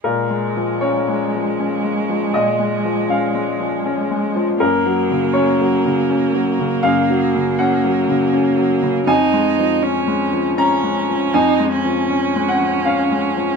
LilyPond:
<<
  \new Staff \with { instrumentName = "Cello" } { \time 3/4 \key bes \minor \tempo 4 = 80 aes2.~ | aes2. | bes2.~ | bes2. |
ees'4 des'4 des'4 | ees'8 des'2~ des'8 | }
  \new Staff \with { instrumentName = "Upright piano" } { \time 3/4 \key bes \minor bes'4 des''2 | ees''4 f''4. r8 | bes'4 des''2 | f''4 ges''4. r8 |
aes''2 bes''4 | aes''4. ges''8 f''4 | }
  \new Staff \with { instrumentName = "Upright piano" } { \clef bass \time 3/4 \key bes \minor \tuplet 3/2 { bes,8 aes8 f8 des'8 aes8 f8 des'8 aes8 f8 } | \tuplet 3/2 { bes,8 aes8 f8 des'8 aes8 f8 des'8 aes8 f8 } | \tuplet 3/2 { ges,8 ges8 des8 des'8 ges8 des8 des'8 ges8 des8 } | \tuplet 3/2 { ges,8 ges8 des8 des'8 ges8 des8 des'8 ges8 des8 } |
\tuplet 3/2 { f,8 aes8 f8 des'8 aes8 f8 des'8 aes8 f8 } | \tuplet 3/2 { f,8 aes8 f8 des'8 aes8 f8 des'8 aes8 f8 } | }
>>